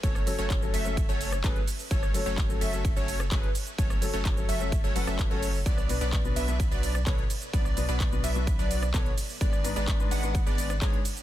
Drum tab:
RD |x-x-x-x-x-x-x-x-|x-x-x-x-x-x-x-x-|x-x-x-x-x-x-x-x-|x-x-x-x-x-x-x-x-|
HH |x-oxx-oxx-oxxxoo|x-oxx-oxx-oxxxox|xxoxxxoxx-oxxxoo|x-oxx-oxx-oxxxox|
SH |xxxxxxxxxxxxx-xx|xxxxxxxxxxxxx-xx|xxxxxxxxxxxxx-xx|xxxxxxxxxxxxx-xx|
CP |----x-------x---|----x-------x---|----x-------x---|----x-------x---|
SD |-r---------r----|-r---------r----|-r---------r----|-r---------r----|
BD |o---o---o---o---|o---o---o---o---|o---o---o---o---|o---o---o---o---|

RD |x-x-x-x-x-x-x-x-|x-x-x-x-x-x-x-x-|
HH |x-oxx-oxx-oxxxoo|x-oxx-oxx-oxxxox|
SH |xxxxxxxxxxxxx-xx|xxxxxxxxxxxxx-xx|
CP |----x-------x---|----x-------x---|
SD |-r---------r----|-r---------r----|
BD |o---o---o---o---|o---o---o---o---|